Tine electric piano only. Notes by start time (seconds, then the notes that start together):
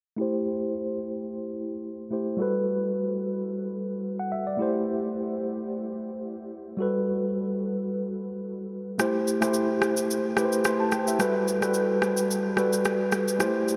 0.16 A3 E4 G4
0.21 C5
2.10 A3 E4 G4 C5
2.37 G3 F#4 A4
2.42 B4
4.19 F#5
4.32 E5
4.47 D5
4.57 A3 E4 G4
4.62 C5
6.77 G3 F#4 A4
6.82 B4
8.98 A3 E4 G4 C5
9.41 A3 E4 G4 C5
10.36 A3 E4 G4 B4
10.45 C5
10.65 C6
10.80 A5
10.92 G5
11.08 E5
11.19 G3 F#4 A4 B4
11.61 G3 F#4 A4 B4
12.56 G3 F#4 A4 B4
13.39 A3 E4 G4 C5